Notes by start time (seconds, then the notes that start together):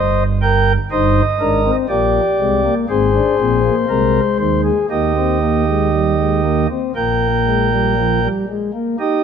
Already playing: G1 G2 C5 D#5
0.42 A#4 G5
0.91 G1 G2 D#4 C5 D#5
1.40 G#1 G#2 D4 A#4
1.65 C4
1.89 A#1 A#2 A#3 G4 D5
2.39 C2 C3 G#3
2.64 A#3
2.89 G#1 G#2 C4 G#4 C5
3.14 D4
3.39 A#1 A#2 C4
3.64 A#3
3.88 C2 C3 G#3 A#4
4.39 D#2 D#3 C5
4.64 G#4
4.90 D#2 D#3 A#3 G4 D#5
5.16 C4
5.42 A#3
5.67 G#3
5.93 G3
6.18 G#3
6.44 A#3
6.70 C4
6.95 A#1 A#2 A#3 A#4 G5
7.47 G#3
7.72 G3
7.98 F3
8.23 G3
8.49 G#3
8.74 A#3
8.99 D#4 G4 D#5